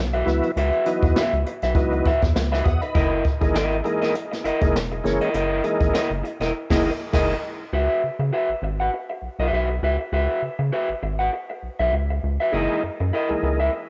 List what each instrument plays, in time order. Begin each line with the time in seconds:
Already playing: analog synth bass B1
0.13 clean electric guitar F#4 B4 E5, closed hi-hat
0.25 analog synth bass C#2, tonewheel organ E3 F#3 B3 E4, muted clean electric guitar stroke, snare, closed hi-hat
0.43 muted clean electric guitar stroke, closed hi-hat
0.56 analog synth bass C#2, clean electric guitar F#4 B4 E5, closed hi-hat
0.72 closed hi-hat
0.85 tonewheel organ E3 F#3 B3 D#4, closed hi-hat
1.02 analog synth bass E2, muted clean electric guitar stroke, kick, closed hi-hat
1.16 clean electric guitar F#4 B4 E5, snare
1.33 analog synth bass C#2, closed hi-hat
1.46 muted clean electric guitar stroke, closed hi-hat
1.62 analog synth bass B1, clean electric guitar F#4 B4 E5, snare, closed hi-hat
1.75 analog synth bass C#2, tonewheel organ E3 F#3 B3 D#4, muted clean electric guitar stroke, kick, closed hi-hat
1.92 muted clean electric guitar stroke, closed hi-hat
2.05 clean electric guitar F#4 B4 E5, kick, closed hi-hat
2.22 analog synth bass E2, muted clean electric guitar stroke, kick, snare, closed hi-hat
2.35 analog synth bass C#2, muted clean electric guitar stroke, snare
2.52 tonewheel organ D#4 B4, clean electric guitar F#4 B4 E5, snare
2.65 analog synth bass E2, tonewheel organ F#4 D#5, muted clean electric guitar stroke, kick, closed hi-hat
2.81 tonewheel organ D#4 B4, muted clean electric guitar stroke, closed hi-hat
2.95 analog synth bass F#1, clean electric guitar E4 A#4 D#5, kick, closed hi-hat
3.24 kick, closed hi-hat
3.41 analog synth bass G#1, tonewheel organ E3 G#3 A#3 D#4, muted clean electric guitar stroke, kick, closed hi-hat
3.54 analog synth bass G#1, clean electric guitar E4 A#4 D#5, snare
3.71 closed hi-hat
3.84 tonewheel organ E3 G#3 A#3 D#4, muted clean electric guitar stroke, closed hi-hat
4.02 clean electric guitar E4 A#4 D#5, snare, closed hi-hat
4.15 muted clean electric guitar stroke, closed hi-hat
4.32 muted clean electric guitar stroke, snare, closed hi-hat
4.44 analog synth bass F#1, clean electric guitar E4 A#4 D#5, closed hi-hat
4.61 analog synth bass F#1, tonewheel organ E3 G#3 A#3 D#4, muted clean electric guitar stroke, kick, closed hi-hat
4.74 analog synth bass E1, muted clean electric guitar stroke, snare
4.91 muted clean electric guitar stroke, closed hi-hat
5.04 analog synth bass F#1, tonewheel organ E3 G#3 A#3 C#4, snare, closed hi-hat
5.21 clean electric guitar E4 A#4 D#5, closed hi-hat
5.34 analog synth bass F#1, clean electric guitar E4 A#4 D#5, closed hi-hat
5.64 tonewheel organ E3 G#3 A#3 D#4, closed hi-hat
5.80 analog synth bass G#1, muted clean electric guitar stroke, kick, closed hi-hat
5.93 clean electric guitar E4 A#4 D#5, snare
6.10 analog synth bass F#1, closed hi-hat
6.24 muted clean electric guitar stroke, closed hi-hat
6.40 analog synth bass E1, clean electric guitar E4 A#4 D#5, snare, closed hi-hat
6.70 analog synth bass F#1, tonewheel organ E3 G#3 A#3 D#4, clean electric guitar E4 A#4 D#5, kick, snare, crash
7.13 analog synth bass F#1, tonewheel organ E3 G#3 A#3 D#4, clean electric guitar E4 A#4 D#5, kick, snare, crash
7.73 analog synth bass C#2, clean electric guitar F#4 B4 E5
8.04 analog synth bass C#3
8.19 analog synth bass C#3, muted clean electric guitar stroke
8.33 clean electric guitar F#4 B4 E5
8.49 analog synth bass G#1
8.62 analog synth bass G#1, muted clean electric guitar stroke
8.80 clean electric guitar F#4 B4 F#5
8.94 muted clean electric guitar stroke
9.10 muted clean electric guitar stroke
9.22 analog synth bass B1
9.39 analog synth bass B1, clean electric guitar F#4 B4 E5
9.52 analog synth bass B1, clean electric guitar F#4 B4 E5
9.70 muted clean electric guitar stroke
9.82 analog synth bass C#2, clean electric guitar F#4 B4 E5
9.99 muted clean electric guitar stroke
10.12 analog synth bass C#2, clean electric guitar F#4 B4 E5
10.42 analog synth bass C#3
10.59 analog synth bass C#3, muted clean electric guitar stroke
10.72 clean electric guitar F#4 B4 E5
10.89 analog synth bass G#1
11.03 analog synth bass G#1, muted clean electric guitar stroke
11.19 clean electric guitar F#4 B4 F#5
11.33 muted clean electric guitar stroke
11.50 muted clean electric guitar stroke
11.63 analog synth bass B1
11.79 analog synth bass B1, clean electric guitar F#4 B4 E5
11.93 analog synth bass C#2, muted clean electric guitar stroke
12.10 muted clean electric guitar stroke
12.23 analog synth bass C#2
12.40 clean electric guitar F#4 B4 E5
12.52 analog synth bass F#1, tonewheel organ E3 G#3 A#3 D#4, clean electric guitar E4 A#4 D#5
12.83 analog synth bass F#2
13.00 analog synth bass F#2, muted clean electric guitar stroke
13.13 clean electric guitar E4 A#4 D#5
13.29 analog synth bass C#2, tonewheel organ E3 G#3 A#3 D#4
13.43 analog synth bass C#2, muted clean electric guitar stroke
13.60 clean electric guitar E4 A#4 E5
13.73 muted clean electric guitar stroke